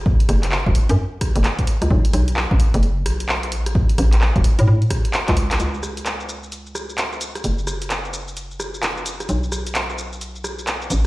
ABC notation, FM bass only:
X:1
M:4/4
L:1/16
Q:"Swing 16ths" 1/4=130
K:Bmix
V:1 name="FM bass" clef=bass
F,,,2 F,,,3 E,,, z F,, z3 F,,, z3 C,, | B,,, z B,,,3 A,,, z F,,,3 B,,,4 A,,,2- | A,,,2 A,,,3 E,,, z A,, A,, z4 C,,2 A,,, | C,,16 |
F,,,16 | B,,,12- B,,,2 A,,,2 |]